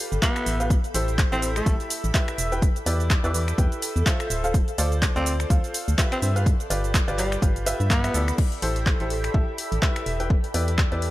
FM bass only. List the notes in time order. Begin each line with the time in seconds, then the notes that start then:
0.12 G1
0.46 A1
0.94 A1
1.32 A1
1.66 A1
2.04 A1
2.38 E1
2.86 E2
3.24 E2
3.58 E2
3.96 E2
4.30 D1
4.78 D2
5.16 D2
5.50 D2
5.88 D2
6.22 G2
6.70 G1
7.08 G1
7.42 G1
7.80 G2
8.14 D2
8.62 A1
9.00 A1
9.34 A1
9.72 A1
10.06 E1
10.54 E2
10.92 E2